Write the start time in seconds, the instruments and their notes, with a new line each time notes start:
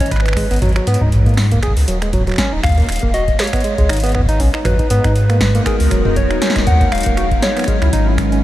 Already playing: sub bass G#1
0.00 tine electric piano C#4, soft synth lead C#5, kick, closed hi-hat
0.06 closed hi-hat
0.11 tine electric piano B4, soft synth lead B4, finger snap, kick, closed hi-hat
0.16 finger snap
0.20 finger snap
0.26 finger snap, closed hi-hat
0.28 finger snap
0.33 finger snap
0.37 tine electric piano G#3, finger snap, kick, open hi-hat
0.51 sub bass G#1, tine electric piano B3, closed hi-hat
0.54 closed hi-hat
0.56 closed hi-hat
0.59 closed hi-hat
0.62 sub bass G#1, tine electric piano F#3, closed hi-hat, mid tom
0.69 closed hi-hat
0.72 finger snap, closed hi-hat
0.76 tine electric piano F#3, closed hi-hat
0.87 sub bass G#2, tine electric piano B3, closed hi-hat
0.94 closed hi-hat
1.01 sub bass G#2, tine electric piano D#4, kick
1.04 kick
1.07 kick
1.10 kick, closed hi-hat
1.12 kick
1.16 kick
1.19 kick
1.23 kick, closed hi-hat
1.26 tine electric piano A#3, kick, closed hi-hat
1.34 finger snap, snare, closed hi-hat, open hi-hat
1.52 tine electric piano A#3, kick, closed hi-hat
1.54 kick
1.59 finger snap, kick, closed hi-hat
1.63 tine electric piano G#4, kick
1.67 kick
1.71 kick
1.77 sub bass C#2, open hi-hat
1.88 sub bass D#1, tine electric piano F#3, closed hi-hat
2.02 tine electric piano G#3, finger snap, closed hi-hat
2.13 tine electric piano F#3, kick, closed hi-hat, mid tom
2.18 mid tom
2.21 mid tom
2.27 tine electric piano F#3, finger snap, closed hi-hat, mid tom
2.29 finger snap, mid tom
2.32 finger snap
2.34 finger snap, mid tom
2.36 tine electric piano C#4, finger snap, kick, snare, closed hi-hat
2.52 sub bass D#1, tine electric piano D#4
2.63 sub bass D#2, soft synth lead F5, finger snap, kick, closed hi-hat, mid tom
2.66 kick, closed hi-hat
2.69 closed hi-hat
2.72 kick, closed hi-hat
2.75 closed hi-hat
2.78 tine electric piano A#3, kick, closed hi-hat
2.80 kick, closed hi-hat
2.82 closed hi-hat
2.84 kick, closed hi-hat
2.86 finger snap, closed hi-hat
2.89 sub bass D#1, closed hi-hat
2.92 closed hi-hat
2.96 closed hi-hat
2.99 sub bass D#1, tine electric piano A#3, kick, closed hi-hat
3.14 tine electric piano F#4, soft synth lead D#5, closed hi-hat
3.28 kick, closed hi-hat
3.39 tine electric piano G#3, soft synth lead C#5, snare, closed hi-hat
3.44 closed hi-hat
3.47 closed hi-hat
3.53 tine electric piano B3, finger snap, kick, closed hi-hat
3.56 closed hi-hat
3.60 closed hi-hat
3.64 tine electric piano G#3, closed hi-hat
3.78 sub bass C#2, tine electric piano G#3, kick, closed hi-hat
3.89 sub bass G#1, tine electric piano D#4, finger snap, closed hi-hat
3.93 closed hi-hat
3.97 closed hi-hat
4.00 tine electric piano B3, closed hi-hat
4.04 closed hi-hat
4.06 closed hi-hat
4.09 closed hi-hat
4.12 tine electric piano B3, finger snap, kick, closed hi-hat, mid tom
4.18 kick
4.20 kick
4.23 kick
4.26 tine electric piano D#4, kick, closed hi-hat
4.40 sub bass B1, tine electric piano C#4, kick, open hi-hat
4.54 tine electric piano D#4, finger snap
4.65 sub bass G#1, tine electric piano F#3, ambient pad G#3, soft synth lead B4, finger snap, closed hi-hat, mid tom
4.79 ambient pad B3, tine electric piano D#4, kick, closed hi-hat
4.88 sub bass G#2, tine electric piano B3, ambient pad D#4, closed hi-hat
5.01 sub bass G#2, tine electric piano D#4, ambient pad F#4, finger snap, kick, closed hi-hat
5.16 closed hi-hat
5.30 tine electric piano A#3, finger snap, closed hi-hat
5.41 kick, snare, open hi-hat
5.45 ambient pad A#4
5.55 tine electric piano A#3, closed hi-hat
5.66 tine electric piano G#4, soft synth lead A#4, finger snap, kick, closed hi-hat
5.80 sub bass C#2, open hi-hat
5.91 sub bass D#1, tine electric piano F#3, finger snap, kick, closed hi-hat
6.05 tine electric piano G#3, mid tom
6.16 tine electric piano F#3, soft synth lead C#5, kick, closed hi-hat, mid tom
6.31 tine electric piano D#4, finger snap, closed hi-hat
6.42 ambient pad F#3, tine electric piano C#4, snare, closed hi-hat
6.50 snare
6.56 sub bass D#1, tine electric piano D#4, finger snap, kick, snare, closed hi-hat
6.62 ambient pad C#4
6.67 sub bass D#2, soft synth lead F#5, closed hi-hat, mid tom
6.81 tine electric piano A#3, kick, closed hi-hat
6.92 sub bass D#1, soft synth lead F5, finger snap, closed hi-hat
6.95 closed hi-hat
6.98 closed hi-hat
7.01 closed hi-hat
7.03 closed hi-hat
7.06 sub bass D#1, tine electric piano A#3, kick, closed hi-hat
7.17 tine electric piano F#4, finger snap, closed hi-hat
7.31 kick, closed hi-hat
7.42 tine electric piano G#3, ambient pad G#3, soft synth lead C#5, snare, closed hi-hat
7.57 tine electric piano B3, finger snap, closed hi-hat
7.59 finger snap, closed hi-hat
7.64 tine electric piano G#3, ambient pad B4, finger snap, closed hi-hat
7.68 kick, closed hi-hat
7.82 sub bass C#2, tine electric piano E4, finger snap, closed hi-hat
7.93 sub bass G#1, tine electric piano D#4, kick, closed hi-hat
8.07 tine electric piano E4
8.18 finger snap, kick, closed hi-hat
8.32 tine electric piano C#4, closed hi-hat